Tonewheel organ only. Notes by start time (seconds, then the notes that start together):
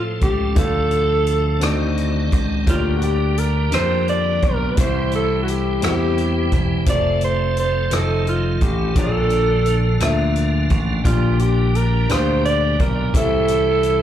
Already playing: F3 A3 C4 A4
0.57 E3 A3 D4 A4
0.64 F3
1.62 D#3 C4 F4 D5
1.69 F#4
2.67 D3 G3 A#3 F4
2.74 G4
4.79 E3 G3 C4 F#4
4.86 G4
6.87 F3 A3 C4 A4
7.91 D#3 A3 C4 F4
8.96 D3 F3 A#3 F4
11.03 D3 G3 A#3 G4
13.15 E3 G3 C4 G4